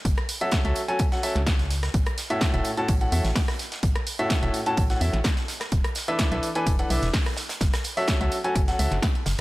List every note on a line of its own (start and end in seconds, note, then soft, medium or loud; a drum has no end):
0.05 0.14 F#1 loud
0.05 kick loud
0.05 closed hi-hat medium
0.18 cross-stick medium
0.18 closed hi-hat soft
0.29 closed hi-hat medium
0.29 open hi-hat loud
0.41 0.62 F#3 medium
0.41 0.62 C#4 medium
0.41 0.62 F#4 medium
0.41 0.62 A4 medium
0.41 0.62 E5 loud
0.41 closed hi-hat soft
0.52 kick loud
0.52 snare loud
0.52 closed hi-hat medium
0.65 0.73 C#2 loud
0.65 0.80 F#3 medium
0.65 0.80 C#4 medium
0.65 0.80 F#4 medium
0.65 0.80 A4 medium
0.65 0.80 E5 loud
0.65 closed hi-hat soft
0.76 closed hi-hat medium
0.76 open hi-hat loud
0.88 1.04 F#3 medium
0.88 1.04 C#4 medium
0.88 1.04 F#4 medium
0.88 1.04 A4 medium
0.88 1.04 G#5 loud
0.88 closed hi-hat soft
0.99 kick loud
0.99 closed hi-hat medium
1.12 1.22 F#3 medium
1.12 1.22 C#4 medium
1.12 1.22 F#4 medium
1.12 1.22 A4 medium
1.12 1.22 F#5 medium
1.12 snare soft
1.12 closed hi-hat soft
1.23 1.39 F#3 medium
1.23 1.39 C#4 medium
1.23 1.39 F#4 medium
1.23 1.39 A4 medium
1.23 1.39 E5 medium
1.23 closed hi-hat medium
1.23 open hi-hat loud
1.35 1.89 C#2 medium
1.35 snare soft
1.35 closed hi-hat soft
1.46 kick loud
1.46 snare loud
1.46 closed hi-hat medium
1.59 snare soft
1.59 closed hi-hat soft
1.70 snare soft
1.70 closed hi-hat medium
1.70 open hi-hat loud
1.83 cross-stick medium
1.83 snare medium
1.83 closed hi-hat soft
1.94 2.03 A1 loud
1.94 kick loud
1.94 closed hi-hat medium
2.06 cross-stick medium
2.06 closed hi-hat soft
2.18 snare medium
2.18 closed hi-hat medium
2.18 open hi-hat loud
2.30 2.51 A2 loud
2.30 2.51 C#4 medium
2.30 2.51 F#4 medium
2.30 2.51 A4 medium
2.30 2.51 E5 loud
2.30 closed hi-hat soft
2.41 kick loud
2.41 snare loud
2.41 closed hi-hat medium
2.54 2.62 E1 loud
2.54 2.69 A2 medium
2.54 2.69 C#4 medium
2.54 2.69 F#4 medium
2.54 2.69 A4 medium
2.54 2.69 E5 loud
2.54 closed hi-hat soft
2.65 closed hi-hat medium
2.65 open hi-hat loud
2.77 2.93 A2 loud
2.77 2.93 C#4 medium
2.77 2.93 F#4 medium
2.77 2.93 A4 medium
2.77 2.93 A5 loud
2.77 closed hi-hat soft
2.88 3.06 A1 medium
2.88 kick loud
2.88 closed hi-hat medium
3.01 3.11 A2 medium
3.01 3.11 C#4 medium
3.01 3.11 F#4 medium
3.01 3.11 A4 medium
3.01 3.11 F#5 medium
3.01 closed hi-hat soft
3.12 3.21 E2 medium
3.12 3.28 A2 medium
3.12 3.28 C#4 medium
3.12 3.28 F#4 medium
3.12 3.28 A4 medium
3.12 3.28 E5 medium
3.12 closed hi-hat medium
3.12 open hi-hat loud
3.24 3.33 A1 medium
3.24 snare soft
3.24 closed hi-hat soft
3.35 kick loud
3.35 snare loud
3.35 closed hi-hat medium
3.35 open hi-hat medium
3.48 cross-stick medium
3.48 snare soft
3.48 closed hi-hat soft
3.59 snare soft
3.59 closed hi-hat medium
3.59 open hi-hat loud
3.72 snare medium
3.72 closed hi-hat soft
3.83 3.92 A1 loud
3.83 kick loud
3.83 closed hi-hat medium
3.96 cross-stick medium
3.96 closed hi-hat soft
4.07 closed hi-hat medium
4.07 open hi-hat loud
4.19 4.40 A2 medium
4.19 4.40 C#4 medium
4.19 4.40 F#4 medium
4.19 4.40 A4 medium
4.19 4.40 E5 loud
4.19 closed hi-hat soft
4.30 kick loud
4.30 snare loud
4.30 closed hi-hat medium
4.43 4.51 E1 loud
4.43 4.58 A2 medium
4.43 4.58 C#4 medium
4.43 4.58 F#4 medium
4.43 4.58 A4 medium
4.43 4.58 E5 loud
4.43 closed hi-hat soft
4.54 closed hi-hat medium
4.54 open hi-hat loud
4.66 4.82 A2 loud
4.66 4.82 C#4 medium
4.66 4.82 F#4 medium
4.66 4.82 A4 medium
4.66 4.82 A5 loud
4.66 closed hi-hat soft
4.77 4.95 A1 medium
4.77 kick loud
4.77 closed hi-hat medium
4.90 5.00 A2 medium
4.90 5.00 C#4 medium
4.90 5.00 F#4 medium
4.90 5.00 A4 medium
4.90 5.00 F#5 medium
4.90 snare soft
4.90 closed hi-hat soft
5.01 5.10 E2 medium
5.01 5.17 A2 medium
5.01 5.17 C#4 medium
5.01 5.17 F#4 medium
5.01 5.17 A4 medium
5.01 5.17 E5 medium
5.01 closed hi-hat medium
5.01 open hi-hat loud
5.13 5.22 A1 medium
5.13 snare soft
5.13 closed hi-hat soft
5.24 kick loud
5.24 snare loud
5.24 closed hi-hat medium
5.37 snare soft
5.37 closed hi-hat soft
5.48 snare medium
5.48 closed hi-hat medium
5.48 open hi-hat loud
5.60 cross-stick medium
5.60 snare medium
5.60 closed hi-hat soft
5.72 5.81 E1 loud
5.72 kick loud
5.72 closed hi-hat medium
5.84 cross-stick medium
5.84 closed hi-hat soft
5.95 snare medium
5.95 closed hi-hat medium
5.95 open hi-hat loud
6.08 6.29 E3 loud
6.08 6.29 D4 medium
6.08 6.29 A4 medium
6.08 6.29 B4 medium
6.08 6.29 E5 loud
6.08 closed hi-hat soft
6.19 kick loud
6.19 snare loud
6.19 closed hi-hat medium
6.19 closed hi-hat loud
6.32 6.40 B1 loud
6.32 6.47 E3 medium
6.32 6.47 D4 medium
6.32 6.47 A4 medium
6.32 6.47 B4 medium
6.32 6.47 E5 loud
6.32 closed hi-hat soft
6.43 closed hi-hat medium
6.43 open hi-hat medium
6.55 6.71 E3 loud
6.55 6.71 D4 medium
6.55 6.71 A4 medium
6.55 6.71 B4 medium
6.55 6.71 G#5 loud
6.55 closed hi-hat soft
6.66 6.84 E1 medium
6.66 kick loud
6.66 closed hi-hat medium
6.79 6.89 E3 medium
6.79 6.89 D4 medium
6.79 6.89 A4 medium
6.79 6.89 B4 medium
6.79 6.89 F#5 medium
6.79 closed hi-hat soft
6.90 6.99 B1 medium
6.90 7.06 E3 medium
6.90 7.06 D4 medium
6.90 7.06 A4 medium
6.90 7.06 B4 medium
6.90 7.06 E5 medium
6.90 closed hi-hat medium
6.90 open hi-hat medium
7.02 7.11 E1 medium
7.02 snare soft
7.02 closed hi-hat soft
7.14 kick loud
7.14 snare loud
7.14 closed hi-hat medium
7.14 open hi-hat medium
7.26 cross-stick medium
7.26 snare soft
7.26 closed hi-hat soft
7.37 snare loud
7.37 closed hi-hat medium
7.37 open hi-hat loud
7.49 snare loud
7.49 closed hi-hat medium
7.49 closed hi-hat soft
7.61 7.70 F#1 loud
7.61 kick loud
7.61 snare loud
7.61 closed hi-hat medium
7.73 cross-stick medium
7.73 snare loud
7.73 closed hi-hat medium
7.73 closed hi-hat soft
7.84 closed hi-hat medium
7.84 open hi-hat loud
7.97 8.18 F#3 loud
7.97 8.18 C#4 medium
7.97 8.18 F#4 medium
7.97 8.18 A4 medium
7.97 8.18 E5 loud
7.97 open hi-hat medium
8.08 kick loud
8.08 snare loud
8.08 closed hi-hat loud
8.08 closed hi-hat medium
8.21 8.29 C#2 loud
8.21 8.36 F#3 medium
8.21 8.36 C#4 medium
8.21 8.36 F#4 medium
8.21 8.36 A4 medium
8.21 8.36 E5 loud
8.21 closed hi-hat soft
8.32 closed hi-hat medium
8.32 open hi-hat loud
8.44 8.60 F#3 loud
8.44 8.60 C#4 medium
8.44 8.60 F#4 medium
8.44 8.60 A4 medium
8.44 8.60 G#5 loud
8.44 closed hi-hat soft
8.55 8.73 F#1 medium
8.55 kick loud
8.55 closed hi-hat loud
8.55 closed hi-hat medium
8.68 8.78 F#3 medium
8.68 8.77 C#4 medium
8.68 8.78 F#4 medium
8.68 8.77 A4 medium
8.68 8.77 F#5 medium
8.68 snare soft
8.68 closed hi-hat soft
8.79 8.88 C#2 medium
8.79 8.95 F#3 medium
8.79 8.95 C#4 medium
8.79 8.95 F#4 medium
8.79 8.95 A4 medium
8.79 8.95 E5 medium
8.79 closed hi-hat medium
8.79 open hi-hat loud
8.91 9.00 F#1 medium
8.91 snare soft
8.91 closed hi-hat soft
9.02 kick loud
9.02 snare loud
9.02 closed hi-hat medium
9.02 closed hi-hat loud
9.15 closed hi-hat soft
9.26 9.35 F#1 loud
9.26 snare loud
9.26 closed hi-hat medium
9.26 open hi-hat loud